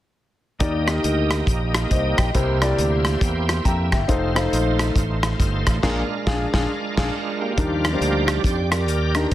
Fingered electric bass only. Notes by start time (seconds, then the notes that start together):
0.60 D#2
1.04 D2
1.47 A#1
1.91 C2
2.18 A#1
2.35 C2
2.78 D2
3.21 E2
3.65 F2
3.93 G1
4.09 F1
4.53 A#1
4.96 A1
5.40 G1
5.67 A1
5.83 A#1
6.27 A#1
6.54 A#1
6.98 A#1
7.58 D#2
8.01 D2
8.44 F2
8.87 D#2